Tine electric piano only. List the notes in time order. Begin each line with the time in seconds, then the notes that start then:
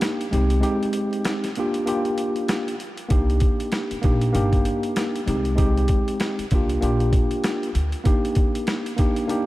Already playing: A#3 D4 D#4 G4
0.31 G#3 C4 D#4 G4
0.60 G#3 C4 D#4 G4
1.57 A#3 D4 F4 G4
1.86 A#3 D4 F4 G4
3.09 A#3 D4 D#4 G4
4.02 A#3 D4 D#4 G4
4.33 A#3 D4 D#4 G4
5.26 G#3 C4 D#4 G4
5.55 G#3 C4 D#4 G4
6.52 A#3 D4 F4 G4
6.81 A#3 D4 F4 G4
8.04 A#3 D4 D#4 G4
8.97 A#3 D4 D#4 G4
9.27 A#3 D4 D#4 G4